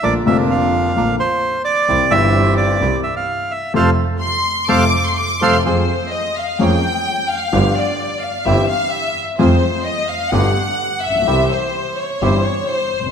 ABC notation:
X:1
M:4/4
L:1/16
Q:1/4=128
K:F
V:1 name="Violin section"
z16 | z16 | z4 c'4 d'3 c' d'2 c'2 | [K:Fm] c4 e2 f2 g6 f2- |
f2 =d4 f2 =e2 f2 e3 z | c4 e2 f2 _g6 =e2- | =e2 c4 d2 c2 d2 c3 z |]
V:2 name="Bandoneon"
d2 e2 f6 c4 d2- | d2 e4 d4 e f3 e2 | [Acf]2 z6 [Acf]2 z4 [Acf]2 | [K:Fm] z16 |
z16 | z16 | z16 |]
V:3 name="Bandoneon"
[DFB]2 [DFB]6 [DFB]2 z6 | [CEG]2 [CEG]6 [CEG]2 z6 | [CFA]2 z6 [CFA]2 z4 [CFA]2 | [K:Fm] [CFA]2 z6 [B,DA]2 z6 |
[=B,FG]2 z6 [C=EG]2 z6 | [CFA]2 z6 [=B,=DG]2 z6 | [C=EG]2 z6 [CEG]2 z6 |]
V:4 name="Grand piano" clef=bass
[B,,,B,,D,F,B,F]2 [F,,,F,,D,F,B,F]6 [B,,,B,,D,F,B,F]2 z6 | [C,,C,E,G,CG]2 [G,,,G,,E,G,CG]6 [C,,C,E,G,CG]2 z6 | [C,F,A,]2 z6 [C,F,A,]2 z4 [C,F,A,]2 | [K:Fm] [F,,F,A,CA]2 z6 [F,,F,B,DA]2 z6 |
[G,,,G,,F,=B,=DG]2 z6 [G,,,G,,=E,G,CG]2 z6 | [F,,F,A,CA]2 z6 [G,,,G,,=D,G,=B,G]2 z4 z/2 =A,,,/2 _B,,,/2 =B,,,/2 | [C,,C,=E,G,CG]2 z6 [G,,,G,,E,G,CG]2 z4 z/2 F,,,/2 _G,,,/2 z/2 |]
V:5 name="Double bass" clef=bass
B,,,2 F,,,6 B,,,2 z6 | C,,2 G,,,6 C,,2 z6 | F,,2 z6 F,,2 z4 F,,2 | [K:Fm] F,,2 z6 F,,2 z6 |
G,,,2 z6 G,,,2 z6 | F,,2 z6 G,,,2 z4 B,,,2 | C,,2 z6 G,,,2 z4 _G,,,2 |]